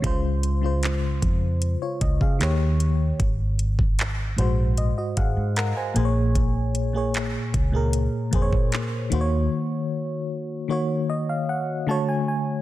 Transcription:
<<
  \new Staff \with { instrumentName = "FM electric piano" } { \time 4/4 \key des \major \tempo 4 = 76 << { r2 r16 <f' des''>16 ees''16 <aes' f''>8 r8. | r4. c''8 ees''16 <ges' ees''>16 <aes' f'' ges''>8 <bes' ges'' bes''>16 <c'' aes''>16 aes''8 | r1 | r4. des''8 ees''16 f''16 ges''8 a''16 aes''16 aes''8 | } \\ { <des aes f' c''>8. <des aes f' c''>8. r4. <ees bes g' des''>8. r16 | r4. <aes, aes ges' c''>4.~ <aes, aes ges' c''>16 r16 <bes, bes aes' c'' des''>8~ | <bes, bes aes' c'' des''>8 r16 <bes, bes aes' des''>8. r16 <bes, bes aes' bes'>8. <bes, bes aes' c'' des''>4 <ees bes ges' c'' des''>8~ | <ees bes ges' c'' des''>4~ <ees bes ges' c'' des''>16 r16 <ees bes ges' des''>4. <d a fis' cis''>8. r16 | } >> }
  \new Staff \with { instrumentName = "Fingered electric bass" } { \clef bass \time 4/4 \key des \major des,4. f,8. r16 des,16 des16 ees,4 | aes,,4. bes,,8. r16 aes,,16 aes,8 r16 bes,,8~ | bes,,4. des,8. r16 f,16 bes,16 r8 ees,8 | r1 | }
  \new DrumStaff \with { instrumentName = "Drums" } \drummode { \time 4/4 <hh bd>8 hh8 <hc hh>8 <hh bd>8 hh8 <hh bd>16 bd16 <hc hh>8 hh8 | <hh bd>8 hh16 bd16 <hc hh>8 hh8 hh8 <hh bd>8 <hc hh>8 hh8 | <hh bd>8 hh8 <hc hh>8 <hh bd>8 hh8 <hh bd>16 bd16 <hc hh>8 hh8 | r4 r4 r4 r4 | }
>>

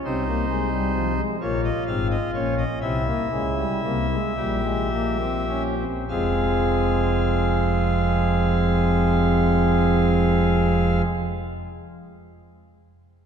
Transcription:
<<
  \new Staff \with { instrumentName = "Pipe organ" } { \time 12/8 \key f \minor \tempo 4. = 33 << { c''4. des''16 ees''16 f''16 ees''16 des''16 ees''16 e''2. | <f aes f''>1. | } \\ { ees'4. f'4. e'4. g'4. | aes'1. | } >> }
  \new Staff \with { instrumentName = "Pipe organ" } { \clef bass \time 12/8 \key f \minor << { c'16 bes16 aes16 g16 f16 aes16 bes8 c'8 des'8 c'16 bes16 aes16 g16 bes16 aes16 g16 aes16 bes16 c'16 des'16 c'16 | c'1. | } \\ { <c, c>4. <bes,, bes,>8 <aes,, aes,>8 <bes,, bes,>8 <c, c>8 <des, des>8 <c, c>8 <bes,, bes,>4. | <f,, f,>1. | } >> }
>>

